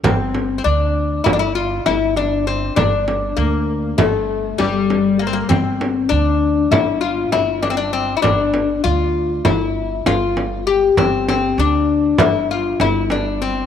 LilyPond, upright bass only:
\new Staff \with { instrumentName = "Upright bass" } { \clef bass \time 9/8 \tempo 4. = 66 g,,4 d,4 g,,4 g,,4. | g,,4 d,4 g,,4 g,,4. | g,,4 d,4 g,,4 g,,4. | g,,4 d,4 g,,4 g,,4. |
g,,4 d,4 g,,4 g,,4. | }